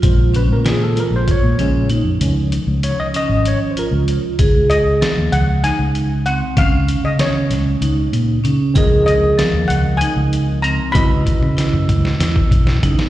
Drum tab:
HH |x-x-x-x-x-x-x-|x-x-x-x-x-x-x-|x-x-x-x-x-x-x-|x-x-x-x-x-x-x-|
SD |----o---------|--------------|----o---o-----|----o-o-------|
T1 |--------------|--------------|--------------|--------------|
T2 |--------------|--------------|--------------|--------------|
FT |--------------|--------------|--------------|--------------|
BD |o-------o-----|--------------|o-------------|o-------------|

HH |x-x-x-x-x-x-x-|x-x-x-x-x-x-x-|
SD |----o---------|----o--oo--o-o|
T1 |--------------|---o----------|
T2 |--------------|-----oo-------|
FT |--------------|------------o-|
BD |o-------------|o-o------oo---|